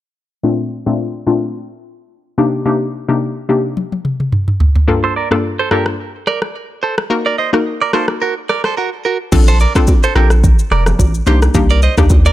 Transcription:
0.43 synth pluck A#2 A3 C4 D4 F4
0.86 synth pluck A#2 A3 C4 D4 F4
1.27 synth pluck A#2 A3 C4 D4 F4
2.38 synth pluck C3 A#3 D4 D#4 G4
2.65 synth pluck C3 A#3 D4 D#4 G4
3.08 synth pluck C3 A#3 D4 D#4 G4
3.49 synth pluck C3 A#3 D4 D#4 G4
3.77 high tom
3.92 high tom
4.05 mid tom
4.20 mid tom
4.32 mid tom
4.48 mid tom
4.60 floor tom
4.75 floor tom
4.88 synth pluck G2 A#3 D4 F4 A4
5.04 clean electric guitar A4 C5
5.16 clean electric guitar A#4 D5
5.31 synth pluck G2 A#3 D4 F4 A4, cross-stick
5.59 clean electric guitar A4 C5
5.71 synth pluck G2 A#3 D4 F4 A4, clean electric guitar G4 A#4, cross-stick
5.86 cross-stick
6.27 clean electric guitar A#4 D5, cross-stick
6.42 cross-stick
6.83 clean electric guitar A4 C5
6.98 cross-stick
7.10 synth pluck A#3 D#4 F#4 A#4
7.26 clean electric guitar A#4 D5
7.38 clean electric guitar C5 D#5
7.53 synth pluck A#3 D#4 F#4 A#4, cross-stick
7.82 clean electric guitar A#4 D5
7.93 synth pluck A#3 D#4 F#4 A#4, clean electric guitar A4 C5, cross-stick
8.08 cross-stick
8.22 clean electric guitar F#4 A#4
8.49 clean electric guitar A#4 D5, cross-stick
8.64 clean electric guitar A4 C5, cross-stick
8.77 clean electric guitar F#4 A#4
9.05 clean electric guitar F#4 A#4
9.32 sub bass A#1, synth pluck C4 D4 F4 A4, kick, crash, low conga, shaker
9.48 clean electric guitar A4 C5, shaker
9.60 clean electric guitar A#4 D5, shaker
9.75 synth pluck C4 D4 F4 A4, kick, cross-stick, shaker
9.87 kick, high bongo, shaker
10.03 clean electric guitar A4 C5, shaker
10.15 sub bass A#1, synth pluck C4 D4 F4 A4, clean electric guitar G4 A#4, cross-stick
10.30 cross-stick, shaker
10.44 kick, low conga, shaker
10.59 shaker
10.71 sub bass F1, clean electric guitar A#4 D5, cross-stick
10.86 cross-stick, low bongo, shaker
10.99 sub bass A1, kick, high bongo, low conga, shaker
11.14 shaker
11.26 sub bass C2, synth pluck A#3 D4 D#4 G4, clean electric guitar G4 C5, low bongo, shaker
11.42 cross-stick, high bongo, shaker
11.54 sub bass C2, synth pluck A#3 D4 D#4 G4, kick, low conga, shaker
11.70 clean electric guitar A#4 D5, shaker
11.82 clean electric guitar C5 D#5, shaker
11.97 sub bass D#2, synth pluck A#3 D4 D#4 G4, kick, cross-stick, shaker
12.10 kick, high bongo, shaker
12.26 clean electric guitar A#4 D5, shaker

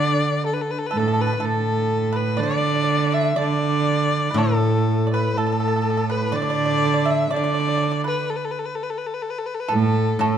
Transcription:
Already playing: cello D3, guzheng D3, pipa D5, erhu D5
0.46 erhu A4
0.54 erhu B4
0.61 erhu A4
0.71 erhu B4
0.79 erhu A4
0.86 erhu B4
0.91 cello A2, pipa A4
0.97 erhu A4, pipa A4
1.08 pipa A4
1.14 pipa A4
1.21 pipa A4, erhu B4
1.27 pipa A4
1.33 pipa B4, erhu B4
1.40 cello A2, pipa A4
1.45 erhu A4
2.13 pipa B4, erhu B4
2.37 cello D3, pipa D5, erhu D5
2.43 pipa D5
2.51 pipa D5
2.58 pipa D5
2.66 pipa D5
2.76 pipa D5
2.83 pipa D5
2.91 pipa D5
2.98 pipa D5
3.07 pipa D5
3.12 pipa D5, erhu E5
3.21 pipa D5
3.36 cello D3, pipa D5, erhu D5
4.31 guzheng A2, pipa B4
4.36 cello A2, pipa A4, erhu A4
5.07 pipa D5
5.13 erhu B4, pipa B4
5.36 cello A2, erhu A4, pipa A4
5.47 pipa A4
5.52 pipa A4
5.60 pipa A4
5.68 pipa A4
5.76 pipa A4
5.82 pipa A4
5.90 pipa A4
5.97 pipa A4
6.10 pipa B4, erhu B4
6.32 cello D3, pipa D5, erhu D5
6.42 pipa D5
6.50 pipa D5
6.55 pipa D5
6.65 pipa D5
6.71 pipa D5
6.77 pipa D5
6.85 pipa D5
6.94 pipa D5
7.05 pipa E5
7.11 erhu E5
7.31 cello D3, pipa D5, erhu D5
7.36 pipa D5
7.44 pipa D5
7.54 pipa D5
7.60 pipa D5
7.68 pipa D5
7.78 pipa D5
7.83 pipa D5
7.92 pipa D5
8.04 pipa B4, erhu B4
8.30 erhu A4
8.36 erhu B4
8.45 erhu A4
8.51 erhu B4
8.59 erhu A4
8.66 erhu B4
8.75 erhu A4
8.83 erhu B4
8.90 erhu A4
8.98 erhu B4
9.06 erhu A4
9.14 erhu B4
9.22 erhu A4
9.30 erhu B4
9.38 erhu A4
9.46 erhu B4
9.54 erhu A4
9.60 erhu B4
9.68 cello A2, pipa A4
9.73 erhu A4
10.19 guzheng A2, cello A2, pipa A4, erhu A4

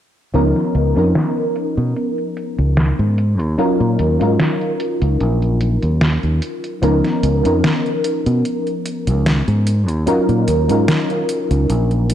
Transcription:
0.34 fingered electric bass C#2, fm electric piano F3 B3 C#4 D#4 A#4, closed hi-hat
0.56 snare, closed hi-hat
0.75 fingered electric bass C#2, closed hi-hat
0.95 fingered electric bass F2, fm electric piano F3 B3 C#4 D#4 A#4, closed hi-hat
1.15 snare, closed hi-hat
1.37 closed hi-hat
1.56 closed hi-hat
1.77 fingered electric bass B2, closed hi-hat
1.96 closed hi-hat
2.18 closed hi-hat
2.37 closed hi-hat
2.58 fingered electric bass C#2, closed hi-hat
2.77 snare, closed hi-hat
2.99 fingered electric bass G#2, closed hi-hat
3.18 closed hi-hat
3.40 fingered electric bass D#2, closed hi-hat
3.58 fm electric piano F#3 C#4 D#4 F4 A#4, muted fingered electric bass stroke, closed hi-hat
3.80 fingered electric bass A#2, closed hi-hat
3.99 fingered electric bass D#2, closed hi-hat
4.19 fingered electric bass G#2, fm electric piano F#3 C#4 D#4 F4 A#4, closed hi-hat
4.40 snare, closed hi-hat
4.61 closed hi-hat
4.80 closed hi-hat
5.02 fingered electric bass C#2, closed hi-hat
5.20 fingered electric bass A#1, closed hi-hat
5.42 closed hi-hat
5.61 closed hi-hat
5.83 fingered electric bass D#2, closed hi-hat
6.01 snare, closed hi-hat
6.23 fingered electric bass D#2, closed hi-hat
6.42 closed hi-hat
6.64 closed hi-hat
6.82 fingered electric bass C#2, fm electric piano F3 B3 C#4 D#4 A#4, closed hi-hat
7.04 snare, closed hi-hat
7.23 fingered electric bass C#2, closed hi-hat
7.43 fingered electric bass F2, fm electric piano F3 B3 C#4 D#4 A#4, closed hi-hat
7.64 snare, closed hi-hat
7.86 closed hi-hat
8.04 closed hi-hat
8.26 fingered electric bass B2, closed hi-hat
8.45 closed hi-hat
8.67 closed hi-hat
8.86 closed hi-hat
9.07 fingered electric bass C#2, closed hi-hat
9.26 snare, closed hi-hat
9.48 fingered electric bass G#2, closed hi-hat
9.67 closed hi-hat
9.88 fingered electric bass D#2, closed hi-hat
10.06 fm electric piano F#3 C#4 D#4 F4 A#4, muted fingered electric bass stroke, closed hi-hat
10.29 fingered electric bass A#2, closed hi-hat
10.48 fingered electric bass D#2, closed hi-hat
10.68 fingered electric bass G#2, fm electric piano F#3 C#4 D#4 F4 A#4, closed hi-hat
10.88 snare, closed hi-hat
11.10 closed hi-hat
11.29 closed hi-hat
11.51 fingered electric bass C#2, closed hi-hat
11.70 fingered electric bass A#1, closed hi-hat
11.91 closed hi-hat
12.10 closed hi-hat

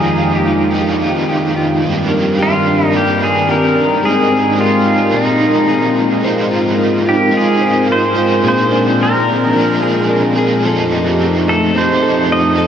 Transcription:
Already playing: analog synth pad F2 D#3 F3 G#3 G5, clean electric guitar F3 D#4 G4, overdriven electric guitar D#4 F4, pedal steel guitar G#4
0.35 pedal steel guitar G4
0.47 clean electric guitar F4
0.71 overdriven electric guitar F3 G#3, clean electric guitar D#4
0.75 overdriven electric guitar D#4 F4 G4
1.02 clean electric guitar F4
1.29 clean electric guitar G4
1.56 clean electric guitar F4
1.82 overdriven electric guitar G2 D#3 G3 A#3 D4 G4, analog synth pad G2 G3 C4 D4 A#4, clean electric guitar G2
2.09 clean electric guitar A#3, overdriven electric guitar D4 G4
2.14 overdriven electric guitar G3 A#3
2.39 pedal steel guitar F4, clean electric guitar G4
2.67 clean electric guitar D4
2.86 pedal steel guitar D#4
2.91 overdriven electric guitar G2 D#3, clean electric guitar A#3
2.95 overdriven electric guitar G3 A#3 D4, pedal steel guitar G4
2.99 overdriven electric guitar G4
3.21 clean electric guitar D4, pedal steel guitar G#4
3.49 clean electric guitar G4, pedal steel guitar A#4
3.75 clean electric guitar D4
4.03 analog synth pad G#2 G#3 G5, overdriven electric guitar G#3 C4 D#4, clean electric guitar G#3, pedal steel guitar G#4
4.31 clean electric guitar C4
4.56 overdriven electric guitar G#3 C4 D#4, clean electric guitar G4
4.61 pedal steel guitar F4, overdriven electric guitar G4
4.86 clean electric guitar D#4
5.10 overdriven electric guitar A#2 D#3 F3, clean electric guitar A#2, analog synth pad A#2 G#3 D#4
5.15 overdriven electric guitar A#3 D#4 G#4, pedal steel guitar D#4
5.41 clean electric guitar D#4
5.69 clean electric guitar G#4
5.96 clean electric guitar D#4
6.21 overdriven electric guitar G#3 D#4, clean electric guitar G#3 C5, analog synth pad C4 A#4
6.25 analog synth pad G#2 G#3 F4, overdriven electric guitar F4 C5
6.51 clean electric guitar F4
6.78 clean electric guitar D#4
7.06 clean electric guitar F4, pedal steel guitar G4
7.31 overdriven electric guitar G#3 D#4, clean electric guitar D#4
7.35 overdriven electric guitar F4 C5, pedal steel guitar G#4
7.61 clean electric guitar C5
7.88 clean electric guitar F4, pedal steel guitar C5
8.15 overdriven electric guitar F4 C5, clean electric guitar C5
8.20 overdriven electric guitar D#4
8.42 overdriven electric guitar A#2 D3 F3, clean electric guitar A#2 G#4, analog synth pad A#2 D4 A#4
8.47 overdriven electric guitar A#3 D4 G#4, pedal steel guitar C5
8.72 clean electric guitar D4
9.00 clean electric guitar A#3, pedal steel guitar A#4
9.27 clean electric guitar D4
9.53 overdriven electric guitar F3 A#3 D4, clean electric guitar F3
9.59 overdriven electric guitar G#4
9.82 clean electric guitar G#4
10.10 clean electric guitar D4
10.35 overdriven electric guitar A#3 D4 G#4, clean electric guitar G#4
10.41 overdriven electric guitar F3
10.62 analog synth pad F2 F3 A3 D#4 G4, overdriven electric guitar F3 C4, clean electric guitar F3 A4
10.68 overdriven electric guitar D#4 A4
10.93 clean electric guitar D#4
11.20 clean electric guitar C4
11.48 clean electric guitar D#4, pedal steel guitar A4
11.74 overdriven electric guitar F3 C4 D#4, clean electric guitar C4
11.78 overdriven electric guitar A4, pedal steel guitar C5
12.03 clean electric guitar A4
12.30 clean electric guitar D#4, pedal steel guitar D#5
12.55 overdriven electric guitar D#4 A4, clean electric guitar A4
12.61 overdriven electric guitar C4

